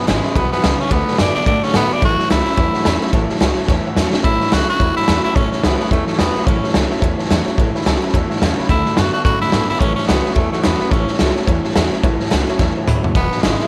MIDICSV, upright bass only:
0, 0, Header, 1, 3, 480
1, 0, Start_track
1, 0, Key_signature, 3, "major"
1, 0, Tempo, 278164
1, 1575, Time_signature, 4, 2, 24, 8
1, 23596, End_track
2, 0, Start_track
2, 0, Title_t, "Upright bass"
2, 0, Program_c, 0, 32
2, 153, Note_on_c, 0, 32, 96
2, 377, Note_off_c, 0, 32, 0
2, 616, Note_on_c, 0, 35, 100
2, 846, Note_off_c, 0, 35, 0
2, 1107, Note_on_c, 0, 37, 88
2, 1333, Note_off_c, 0, 37, 0
2, 1574, Note_on_c, 0, 38, 102
2, 1805, Note_off_c, 0, 38, 0
2, 2064, Note_on_c, 0, 42, 92
2, 2290, Note_off_c, 0, 42, 0
2, 2528, Note_on_c, 0, 45, 101
2, 2761, Note_off_c, 0, 45, 0
2, 3019, Note_on_c, 0, 45, 93
2, 3247, Note_off_c, 0, 45, 0
2, 3492, Note_on_c, 0, 33, 101
2, 3723, Note_off_c, 0, 33, 0
2, 4000, Note_on_c, 0, 37, 94
2, 4219, Note_off_c, 0, 37, 0
2, 4445, Note_on_c, 0, 40, 95
2, 4679, Note_off_c, 0, 40, 0
2, 4936, Note_on_c, 0, 40, 91
2, 5165, Note_off_c, 0, 40, 0
2, 5403, Note_on_c, 0, 33, 89
2, 5637, Note_off_c, 0, 33, 0
2, 5887, Note_on_c, 0, 37, 88
2, 6120, Note_off_c, 0, 37, 0
2, 6356, Note_on_c, 0, 40, 92
2, 6593, Note_off_c, 0, 40, 0
2, 6843, Note_on_c, 0, 40, 89
2, 7077, Note_off_c, 0, 40, 0
2, 7320, Note_on_c, 0, 33, 95
2, 7556, Note_off_c, 0, 33, 0
2, 7813, Note_on_c, 0, 37, 90
2, 8043, Note_off_c, 0, 37, 0
2, 8285, Note_on_c, 0, 40, 100
2, 8518, Note_off_c, 0, 40, 0
2, 8773, Note_on_c, 0, 40, 96
2, 9003, Note_off_c, 0, 40, 0
2, 9247, Note_on_c, 0, 33, 98
2, 9480, Note_off_c, 0, 33, 0
2, 9741, Note_on_c, 0, 37, 90
2, 9968, Note_off_c, 0, 37, 0
2, 10202, Note_on_c, 0, 40, 100
2, 10437, Note_off_c, 0, 40, 0
2, 10701, Note_on_c, 0, 40, 88
2, 10928, Note_off_c, 0, 40, 0
2, 11163, Note_on_c, 0, 33, 100
2, 11398, Note_off_c, 0, 33, 0
2, 11648, Note_on_c, 0, 37, 98
2, 11880, Note_off_c, 0, 37, 0
2, 12120, Note_on_c, 0, 40, 99
2, 12355, Note_off_c, 0, 40, 0
2, 12607, Note_on_c, 0, 40, 85
2, 12840, Note_off_c, 0, 40, 0
2, 13086, Note_on_c, 0, 33, 96
2, 13319, Note_off_c, 0, 33, 0
2, 13573, Note_on_c, 0, 37, 94
2, 13803, Note_off_c, 0, 37, 0
2, 14048, Note_on_c, 0, 40, 95
2, 14281, Note_off_c, 0, 40, 0
2, 14531, Note_on_c, 0, 40, 94
2, 14762, Note_off_c, 0, 40, 0
2, 15007, Note_on_c, 0, 38, 93
2, 15240, Note_off_c, 0, 38, 0
2, 15499, Note_on_c, 0, 42, 95
2, 15727, Note_off_c, 0, 42, 0
2, 15956, Note_on_c, 0, 45, 97
2, 16193, Note_off_c, 0, 45, 0
2, 16456, Note_on_c, 0, 45, 91
2, 16685, Note_off_c, 0, 45, 0
2, 16921, Note_on_c, 0, 33, 101
2, 17157, Note_off_c, 0, 33, 0
2, 17421, Note_on_c, 0, 37, 87
2, 17648, Note_off_c, 0, 37, 0
2, 17875, Note_on_c, 0, 40, 106
2, 18113, Note_off_c, 0, 40, 0
2, 18399, Note_on_c, 0, 40, 83
2, 18619, Note_off_c, 0, 40, 0
2, 18834, Note_on_c, 0, 33, 90
2, 19072, Note_off_c, 0, 33, 0
2, 19337, Note_on_c, 0, 37, 89
2, 19566, Note_off_c, 0, 37, 0
2, 19802, Note_on_c, 0, 40, 97
2, 20037, Note_off_c, 0, 40, 0
2, 20306, Note_on_c, 0, 40, 88
2, 20531, Note_off_c, 0, 40, 0
2, 20767, Note_on_c, 0, 33, 97
2, 21000, Note_off_c, 0, 33, 0
2, 21276, Note_on_c, 0, 37, 93
2, 21498, Note_off_c, 0, 37, 0
2, 21736, Note_on_c, 0, 40, 93
2, 21966, Note_off_c, 0, 40, 0
2, 22218, Note_on_c, 0, 38, 85
2, 22447, Note_off_c, 0, 38, 0
2, 22694, Note_on_c, 0, 28, 100
2, 22925, Note_off_c, 0, 28, 0
2, 23198, Note_on_c, 0, 32, 91
2, 23419, Note_off_c, 0, 32, 0
2, 23596, End_track
3, 0, Start_track
3, 0, Title_t, "Muted upright bass strokes"
3, 904, Note_on_c, 9, 29, 71
3, 1077, Note_off_c, 9, 29, 0
3, 1375, Note_on_c, 9, 29, 74
3, 1548, Note_off_c, 9, 29, 0
3, 2335, Note_on_c, 9, 29, 79
3, 2507, Note_off_c, 9, 29, 0
3, 2822, Note_on_c, 9, 29, 72
3, 2994, Note_off_c, 9, 29, 0
3, 3306, Note_on_c, 9, 29, 74
3, 3479, Note_off_c, 9, 29, 0
3, 4268, Note_on_c, 9, 29, 69
3, 4440, Note_off_c, 9, 29, 0
3, 4740, Note_on_c, 9, 29, 71
3, 4913, Note_off_c, 9, 29, 0
3, 5222, Note_on_c, 9, 29, 75
3, 5395, Note_off_c, 9, 29, 0
3, 5698, Note_on_c, 9, 29, 74
3, 5870, Note_off_c, 9, 29, 0
3, 6176, Note_on_c, 9, 29, 71
3, 6348, Note_off_c, 9, 29, 0
3, 6644, Note_on_c, 9, 29, 76
3, 6817, Note_off_c, 9, 29, 0
3, 7127, Note_on_c, 9, 29, 70
3, 7299, Note_off_c, 9, 29, 0
3, 8575, Note_on_c, 9, 29, 74
3, 8747, Note_off_c, 9, 29, 0
3, 9054, Note_on_c, 9, 29, 78
3, 9226, Note_off_c, 9, 29, 0
3, 10506, Note_on_c, 9, 29, 78
3, 10679, Note_off_c, 9, 29, 0
3, 10978, Note_on_c, 9, 29, 73
3, 11151, Note_off_c, 9, 29, 0
3, 12422, Note_on_c, 9, 29, 72
3, 12594, Note_off_c, 9, 29, 0
3, 12887, Note_on_c, 9, 29, 74
3, 13060, Note_off_c, 9, 29, 0
3, 14325, Note_on_c, 9, 29, 75
3, 14497, Note_off_c, 9, 29, 0
3, 14816, Note_on_c, 9, 29, 71
3, 14988, Note_off_c, 9, 29, 0
3, 16258, Note_on_c, 9, 29, 77
3, 16431, Note_off_c, 9, 29, 0
3, 16733, Note_on_c, 9, 29, 74
3, 16905, Note_off_c, 9, 29, 0
3, 17714, Note_on_c, 9, 29, 73
3, 17886, Note_off_c, 9, 29, 0
3, 18191, Note_on_c, 9, 29, 78
3, 18364, Note_off_c, 9, 29, 0
3, 18653, Note_on_c, 9, 29, 73
3, 18826, Note_off_c, 9, 29, 0
3, 20104, Note_on_c, 9, 29, 72
3, 20277, Note_off_c, 9, 29, 0
3, 20603, Note_on_c, 9, 29, 74
3, 20775, Note_off_c, 9, 29, 0
3, 21082, Note_on_c, 9, 29, 72
3, 21255, Note_off_c, 9, 29, 0
3, 21571, Note_on_c, 9, 29, 79
3, 21743, Note_off_c, 9, 29, 0
3, 22029, Note_on_c, 9, 29, 73
3, 22202, Note_off_c, 9, 29, 0
3, 22986, Note_on_c, 9, 29, 73
3, 23158, Note_off_c, 9, 29, 0
3, 23474, Note_on_c, 9, 29, 76
3, 23596, Note_off_c, 9, 29, 0
3, 23596, End_track
0, 0, End_of_file